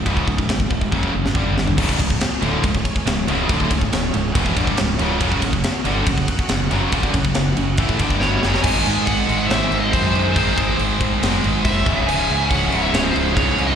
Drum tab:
CC |----------------|x---------------|----------------|----------------|
RD |b---b-----------|--x-x-x-x-x-x-x-|x-x-x-x-x-x-x-x-|x-x-x-x-x-x-x-x-|
SD |----o------o--o-|----o-------o---|----o-------o---|----o-------o---|
T2 |------------o---|----------------|----------------|----------------|
FT |---------------o|----------------|----------------|----------------|
BD |oooooooooo--o---|oooo----oooo----|oooo----oooo----|oooo----oooo----|

CC |----------------|x-x-x-x-x-x-x-x-|x-x-x-x-x-x-x-x-|x-x-x-x-x-x-x-x-|
RD |x-x-x-x-x-x-----|----------------|----------------|----------------|
SD |----o-------o-oo|--------o-------|--------o-------|--------o-------|
T2 |----------------|----------------|----------------|----------------|
FT |----------------|----------------|----------------|----------------|
BD |oooo----oooo----|o---o-------o---|o-o---o-----o-o-|----o-------o---|